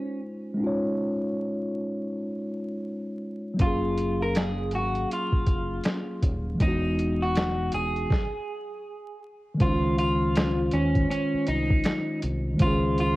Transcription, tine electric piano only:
0.00 0.53 G#3 medium
0.00 0.54 C#4 medium
0.00 0.56 D#4 medium
0.00 0.58 F4 medium
0.00 0.59 C5 medium
0.54 3.53 G#3 medium
0.54 3.54 C#4 medium
0.60 3.56 D#4 medium
0.60 3.58 F4 medium
0.67 3.59 C#5 medium
3.54 6.53 F#3 medium
3.54 6.54 A#3 medium
3.60 6.56 C#4 medium
3.60 6.58 F5 medium
3.67 6.59 G#4 medium
6.55 8.04 E3 medium
6.55 8.06 G#3 medium
6.61 8.07 B3 medium
6.61 8.09 D#4 medium
6.68 8.11 F#4 medium
9.54 12.53 D#3 medium
9.54 12.55 G#3 medium
9.60 12.58 C#4 medium
9.60 12.56 C5 medium
9.67 9.71 D#4 medium
9.74 12.63 F4 medium
12.54 13.16 D#3 medium
12.54 13.16 G#3 medium
12.61 13.16 C#4 medium
12.61 13.16 C5 medium
12.67 13.16 G#4 medium

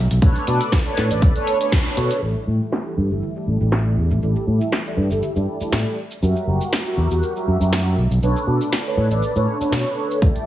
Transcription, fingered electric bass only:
0.11 0.20 B1 medium
0.48 0.59 B2 medium
0.98 1.09 A2 medium
1.11 1.21 A1 medium
1.97 2.08 B2 loud
2.22 2.33 A1 medium
2.47 2.58 A2 medium
2.97 3.09 G2 medium
3.11 3.20 G1 medium
3.47 3.59 A1 medium
3.61 3.94 A1 medium
3.97 4.08 E2 medium
4.11 4.20 A1 medium
4.22 4.34 A1 medium
4.47 4.58 A2 medium
4.97 5.08 G2 medium
5.11 5.20 G1 medium
5.36 5.45 G2 medium
5.61 muted fingered electric bass stroke soft
5.72 5.83 A2 medium
6.22 6.34 F#2 medium
6.47 6.58 F#1 medium
6.97 7.08 E2 medium
7.10 7.20 E2 medium
7.47 7.59 F#2 medium
7.60 7.94 F#2 medium
7.97 8.08 B1 medium
8.11 8.20 B1 medium
8.22 8.33 B1 medium
8.47 8.58 B2 medium
8.97 9.08 A2 medium
9.11 9.20 A1 medium
9.36 9.45 A2 medium
9.61 muted fingered electric bass stroke soft
9.72 9.83 B2 medium
10.22 10.33 A1 medium

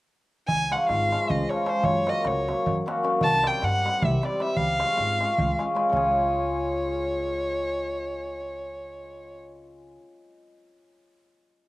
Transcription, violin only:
0.48 0.74 G#5 loud
0.72 0.88 F#5 medium
0.89 1.32 F5 medium
1.30 1.51 D#5 medium
1.49 1.71 C#5 medium
1.69 1.86 C5 medium
1.85 2.11 C#5 medium
2.09 2.28 D#5 medium
2.27 2.72 C#5 medium
3.23 3.48 A5 loud
3.47 3.65 G5 medium
3.64 4.06 F#5 loud
4.05 4.26 E5 medium
4.25 4.43 D5 medium
4.42 4.58 E5 medium
4.57 5.60 F5 loud
5.93 9.38 C#5 medium

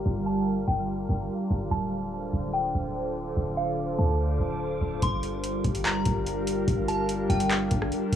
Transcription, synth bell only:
0.26 0.65 A5 medium
0.68 0.87 G5 medium
1.71 2.50 A5 medium
2.53 2.93 G5 medium
3.57 3.96 F5 medium
3.99 4.18 A5 medium
5.03 5.81 C6 loud
5.85 6.24 A#5 medium
6.88 7.27 A5 medium
7.30 7.49 G5 medium

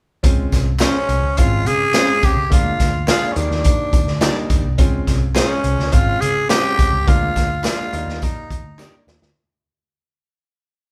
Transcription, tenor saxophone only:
0.81 1.40 C#4 medium
1.38 1.68 F4 medium
1.67 2.26 G#4 loud
2.25 2.52 G4 medium
2.53 3.05 F4 medium
3.10 3.34 F4 loud
3.32 3.39 C#4 medium
3.38 4.51 D4 medium
5.38 5.95 C#4 medium
5.93 6.22 F4 medium
6.21 6.49 G#4 loud
6.50 7.10 G4 loud
7.08 7.65 F4 medium
7.67 8.24 F4 loud
8.23 9.08 D#4 medium

